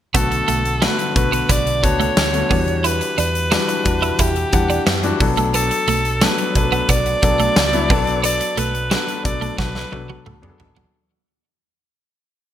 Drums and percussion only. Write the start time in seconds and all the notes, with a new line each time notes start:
0.15 kick, closed hi-hat
0.32 closed hi-hat
0.48 closed hi-hat
0.65 closed hi-hat
0.82 snare, tambourine
0.99 closed hi-hat
1.16 kick, closed hi-hat
1.33 closed hi-hat
1.49 kick, closed hi-hat
1.67 closed hi-hat
1.84 kick, closed hi-hat
2.01 closed hi-hat
2.17 snare, tambourine
2.34 closed hi-hat
2.51 kick, open hi-hat
2.68 closed hi-hat
2.84 closed hi-hat
3.01 closed hi-hat
3.18 closed hi-hat
3.35 closed hi-hat
3.52 snare, tambourine
3.69 closed hi-hat
3.85 kick, closed hi-hat
4.03 closed hi-hat
4.19 kick, closed hi-hat
4.36 closed hi-hat
4.53 kick, closed hi-hat
4.70 closed hi-hat
4.87 snare, tambourine
5.03 closed hi-hat
5.20 kick, open hi-hat
5.37 closed hi-hat
5.54 closed hi-hat
5.71 closed hi-hat
5.88 closed hi-hat
6.05 closed hi-hat
6.21 snare, tambourine
6.38 closed hi-hat
6.55 kick, closed hi-hat
6.72 closed hi-hat
6.89 kick, closed hi-hat
7.06 closed hi-hat
7.23 kick, closed hi-hat
7.40 closed hi-hat
7.56 snare, tambourine
7.73 closed hi-hat
7.90 kick, open hi-hat
8.07 closed hi-hat
8.24 closed hi-hat
8.41 closed hi-hat
8.57 closed hi-hat
8.75 closed hi-hat
8.91 snare, tambourine
9.08 closed hi-hat
9.25 kick, closed hi-hat
9.42 closed hi-hat
9.58 kick, snare
9.75 snare
9.93 high tom
10.10 high tom
10.26 mid tom
10.43 mid tom
10.60 floor tom
10.76 floor tom